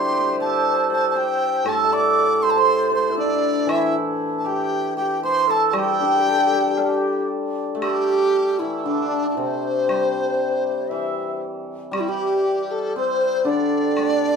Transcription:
Already playing: hammered dulcimer D3 G3 C4 D4 E4, xiao C5, dizi C6
0.05 hammered dulcimer G4
0.12 hammered dulcimer G4
0.19 hammered dulcimer G4
0.27 hammered dulcimer G4
0.32 hammered dulcimer C5
0.40 hammered dulcimer A4, dizi A5
0.90 hammered dulcimer A4, dizi A5
1.10 dizi A5
1.16 hammered dulcimer G4, dizi G5
1.65 hammered dulcimer A2 A4, xiao A4, high woodblock
1.69 dizi A5
1.84 hammered dulcimer E5
1.92 xiao D5, hammered dulcimer D5, dizi D6
2.43 hammered dulcimer C5, dizi C6
2.50 dizi A5
2.55 xiao C5, hammered dulcimer C5, dizi C6
2.92 hammered dulcimer C5, xiao C5, dizi C6
3.10 hammered dulcimer E4
3.17 hammered dulcimer D4, xiao D4, dizi D5
3.67 hammered dulcimer E3 E4, xiao E4, dizi E5, high woodblock
4.38 dizi A5
4.45 hammered dulcimer G4, xiao G4, dizi G5
4.97 hammered dulcimer G4, xiao G4, dizi G5
5.23 xiao C5, hammered dulcimer C5, dizi C6
5.47 xiao A4, hammered dulcimer A4, dizi A5
5.69 hammered dulcimer G3, dizi A5
5.73 xiao G4, hammered dulcimer G4, dizi G5, high woodblock
5.83 xiao A4
5.92 xiao G4
6.00 hammered dulcimer D4, xiao A4
6.05 xiao G4
6.16 xiao A4
6.21 xiao G4
6.27 hammered dulcimer G4, xiao A4
6.39 xiao G4
6.47 xiao A4
6.52 xiao G4, hammered dulcimer A4
6.63 xiao A4
6.71 xiao G4
6.77 xiao A4, hammered dulcimer D5, low woodblock
6.85 xiao G4
7.74 hammered dulcimer A3, xiao A4
7.82 hammered dulcimer G3, dizi G4, xiao G4, high woodblock
8.54 xiao G4
8.59 hammered dulcimer E3, xiao E4, dizi E4
8.84 hammered dulcimer D3, xiao D4, dizi D4
9.30 dizi D4
9.36 hammered dulcimer C3, xiao C5, dizi C5
9.88 hammered dulcimer G3, high woodblock
10.89 hammered dulcimer E3, xiao E5
11.91 hammered dulcimer G3, xiao G4, high woodblock
11.95 dizi G4
12.00 dizi E4
12.07 hammered dulcimer G3, xiao G4, dizi G4
12.71 dizi A4
12.96 hammered dulcimer C4, xiao C5, dizi C5
13.44 hammered dulcimer D3 D4, xiao D4
13.49 dizi D5
13.97 hammered dulcimer A3, high woodblock

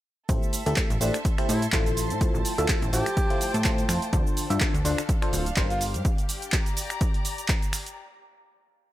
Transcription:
0.29 analog synth bass A1, fm electric piano A3 E4 G4 A4 C5, string section A4, kick, closed hi-hat, shaker
0.38 string section E5
0.43 shaker
0.53 open hi-hat, shaker
0.66 analog synth bass D2, fm electric piano A3 E4 G4 A4 E5, closed hi-hat, shaker
0.76 kick, clap, closed hi-hat, shaker
0.90 analog synth bass A1, closed hi-hat, shaker
0.97 fm electric piano A3 E4, string section A5 C6
1.01 analog synth bass A1, tenor saxophone D4, fm electric piano G4 A4 C5, open hi-hat, shaker
1.14 finger snap, closed hi-hat, shaker
1.25 kick, closed hi-hat, shaker
1.38 fm electric piano A3 E4 G4 A4 C5, finger snap, closed hi-hat
1.49 analog synth bass A2, tenor saxophone E4, open hi-hat, shaker
1.62 closed hi-hat, shaker
1.72 analog synth bass A1, fm electric piano A3 E4 F4 A4 C5, kick, clap, closed hi-hat, shaker
1.86 closed hi-hat, shaker
1.97 string section F3, open hi-hat, shaker
2.10 analog synth bass A2, closed hi-hat, shaker
2.21 fm electric piano A3 E4 F4 A4 C5, kick, closed hi-hat, shaker
2.28 string section C5
2.34 analog synth bass A1, shaker
2.42 string section G5, open hi-hat, shaker
2.58 analog synth bass D2, fm electric piano A3 E4 F4 A4 E5, closed hi-hat, shaker
2.68 kick, clap, closed hi-hat, shaker
2.82 analog synth bass A1, closed hi-hat, shaker
2.93 analog synth bass A1, fm electric piano A3 E4 F4 A4 C5, tenor saxophone G4, open hi-hat, shaker
3.06 finger snap, closed hi-hat, shaker
3.17 kick, closed hi-hat, shaker
3.30 fm electric piano A3 E4 F4 A4 C5, closed hi-hat
3.41 open hi-hat, shaker
3.54 analog synth bass A2, closed hi-hat, shaker
3.64 fm electric piano A3 E4 F4 A4 C5, kick, clap, closed hi-hat, shaker
3.78 closed hi-hat, shaker
3.89 analog synth bass F2, finger snap, open hi-hat, shaker
4.02 closed hi-hat, shaker
4.13 analog synth bass D2, fm electric piano D3 D4 F4 A4 C5, string section D4, kick, closed hi-hat, shaker
4.27 string section A4, shaker
4.37 open hi-hat, shaker
4.50 analog synth bass G2, fm electric piano D3 D4 F4 A4 E5, closed hi-hat, shaker
4.60 kick, clap, closed hi-hat, shaker
4.74 analog synth bass D2, closed hi-hat, shaker
4.85 analog synth bass D2, fm electric piano D3 D4 F4 A4 C5, tenor saxophone D4, open hi-hat, shaker
4.89 string section F5
4.98 finger snap, closed hi-hat, shaker
5.09 kick, closed hi-hat, shaker
5.22 fm electric piano D3 D4 F4 A4 C5, finger snap, closed hi-hat
5.33 analog synth bass D1, open hi-hat, shaker
5.46 closed hi-hat, shaker
5.56 analog synth bass G1, fm electric piano G3 D4 G4 A#4 C5, kick, clap, closed hi-hat, shaker
5.70 tenor saxophone F4, closed hi-hat, shaker
5.81 string section G4, open hi-hat, shaker
5.94 analog synth bass G2, closed hi-hat, shaker
6.05 kick, closed hi-hat, shaker
6.18 closed hi-hat, shaker
6.29 open hi-hat, shaker
6.40 string section D5, closed hi-hat, shaker
6.52 kick, clap, closed hi-hat, shaker
6.57 string section A#5
6.66 closed hi-hat, shaker
6.77 open hi-hat, shaker
6.90 finger snap, closed hi-hat, shaker
7.01 kick, closed hi-hat, shaker
7.14 closed hi-hat
7.25 open hi-hat, shaker
7.38 closed hi-hat, shaker
7.48 kick, clap, closed hi-hat, shaker
7.62 closed hi-hat, shaker
7.73 finger snap, open hi-hat, shaker
7.86 closed hi-hat, shaker

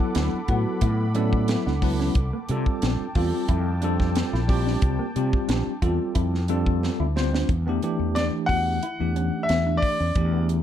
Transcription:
Already playing: tine electric piano F#3 B3 E4 A4, analog synth pad A4 F#5 B5 D6
0.15 fretless electric bass D2, clean electric guitar D4, snare, closed hi-hat
0.34 muted fretless electric bass stroke
0.48 fretless electric bass A2, tine electric piano F#3 B3 E4 B4, clean electric guitar F#4, kick, closed hi-hat
0.81 fretless electric bass A2, clean electric guitar E4, kick, closed hi-hat
1.14 tine electric piano F#3 B3 E4 A4 D5, clean electric guitar C#4, closed hi-hat
1.33 kick
1.48 tine electric piano E5, snare, closed hi-hat
1.66 fretless electric bass C#2, clean electric guitar D4, tine electric piano F#5, snare
1.82 tine electric piano F#3 B3 E4 B4 A5, kick, open hi-hat
2.00 clean electric guitar C#4, snare
2.15 fretless electric bass C2, analog synth pad G5 A5, kick, closed hi-hat
2.33 clean electric guitar A#3
2.49 fretless electric bass C3, tine electric piano G3 C4 F4 A4, closed hi-hat
2.66 kick
2.82 fretless electric bass A#1, clean electric guitar D4, snare, closed hi-hat
3.00 muted fretless electric bass stroke
3.15 fretless electric bass E2, tine electric piano G3 C4 F4 A4, clean electric guitar F4, kick, open hi-hat
3.48 fretless electric bass F2, clean electric guitar E4, kick, closed hi-hat
3.81 tine electric piano G3 C4 F4 A4, clean electric guitar D4, closed hi-hat
4.00 kick, snare
4.15 snare, closed hi-hat
4.33 fretless electric bass A#1, clean electric guitar E4, snare
4.48 tine electric piano G3 C4 F4 G4, kick, open hi-hat
4.66 clean electric guitar D4, snare
4.82 fretless electric bass C2, kick, closed hi-hat
4.99 clean electric guitar A#3
5.16 fretless electric bass C3, tine electric piano G3 C4 F4 G4, closed hi-hat
5.33 kick
5.48 fretless electric bass A#1, clean electric guitar D4, snare, closed hi-hat
5.67 muted fretless electric bass stroke
5.82 fretless electric bass E2, tine electric piano G3 C4 F4 A4, clean electric guitar F4, kick, closed hi-hat
6.15 fretless electric bass F2, clean electric guitar E4, kick, closed hi-hat
6.34 snare
6.48 tine electric piano G3 C4 F4 A4, clean electric guitar D4, closed hi-hat
6.66 kick
6.83 snare
7.00 fretless electric bass D2, clean electric guitar E4
7.16 tine electric piano G3 C4 F4 C5, snare
7.34 clean electric guitar D4, snare
7.49 fretless electric bass E2, kick, closed hi-hat
7.67 tine electric piano E3 A3 D4 G4, clean electric guitar B3
7.82 tine electric piano E3 A3 D4 G4, closed hi-hat
7.99 fretless electric bass E2
8.15 clean electric guitar D4, grand piano D5, snare, closed hi-hat
8.46 fretless electric bass E2, clean electric guitar F#4, grand piano F#5, kick, open hi-hat
8.83 clean electric guitar E4, closed hi-hat
9.00 fretless electric bass E2, tine electric piano E3 A3 D4 G4
9.16 clean electric guitar C#4, closed hi-hat
9.43 grand piano E5
9.49 fretless electric bass E2, snare, closed hi-hat
9.67 clean electric guitar D4
9.77 grand piano D5
9.83 kick, open hi-hat
10.00 fretless electric bass E2, clean electric guitar C#4
10.15 fretless electric bass E2, tine electric piano E3 A3 D4 G4, kick, closed hi-hat
10.33 clean electric guitar B3
10.49 closed hi-hat

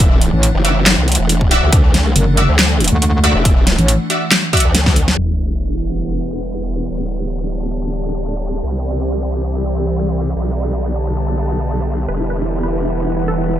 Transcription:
Already playing: wobble bass E1, ambient pad E3 A3 D4 F#5, synth stab F#4 D5 E5
0.21 closed hi-hat
0.33 wobble bass A1
0.43 closed hi-hat
0.55 wobble bass F#1
0.65 synth stab F#4 D5 E5, closed hi-hat
0.86 snare, clap, closed hi-hat
0.98 wobble bass C2
1.08 closed hi-hat
1.12 closed hi-hat
1.15 closed hi-hat
1.19 wobble bass E1
1.29 closed hi-hat
1.41 kick
1.51 synth stab F#4 D5 E5, closed hi-hat
1.63 wobble bass D2
1.73 wobble bass D2, kick, closed hi-hat
1.94 snare, closed hi-hat
2.16 wobble bass F#1, closed hi-hat
2.37 synth stab F#4 D5 E5, closed hi-hat
2.49 wobble bass D2
2.59 snare, clap, closed hi-hat
2.80 closed hi-hat
2.84 closed hi-hat
2.88 closed hi-hat
2.92 wobble bass D2
3.02 closed hi-hat
3.24 synth stab F#4 D5 E5, closed hi-hat
3.35 wobble bass E1
3.45 kick, closed hi-hat
3.67 snare, closed hi-hat
3.78 wobble bass A1, closed hi-hat
3.88 closed hi-hat
4.10 synth stab F#4 D5 E5, closed hi-hat
4.32 snare, clap, closed hi-hat
4.53 synth stab F#4 D5 E5, kick, closed hi-hat
4.57 closed hi-hat
4.60 closed hi-hat
4.65 wobble bass D2
4.75 snare, closed hi-hat
4.86 kick, snare
4.96 closed hi-hat
5.08 snare
5.18 wobble bass E1, ambient pad E3 G3 B3 G4, analog synth pad E4, sub drop
5.54 analog synth pad F#5
5.65 analog synth pad B4
6.90 wobble bass D1, ambient pad D3, analog synth pad G4
7.24 analog synth pad D5
7.33 analog synth pad A5
8.63 wobble bass C2, ambient pad E3 C4, analog synth pad C4
10.36 wobble bass B1, ambient pad D3 B3
10.77 analog synth pad A5
12.08 wobble bass E1, ambient pad E3 G4, analog synth pad E4, synth pluck B4
12.20 synth pluck E4
12.30 synth pluck B4
12.36 analog synth pad B4
12.42 synth pluck E4
12.52 synth pluck E4
12.59 analog synth pad F#5
12.63 synth pluck B4
12.73 synth pluck E4
12.85 synth pluck E4
13.07 synth pluck E4
13.16 synth pluck E4
13.28 synth pluck A4
13.38 synth pluck E4
13.50 synth pluck E4

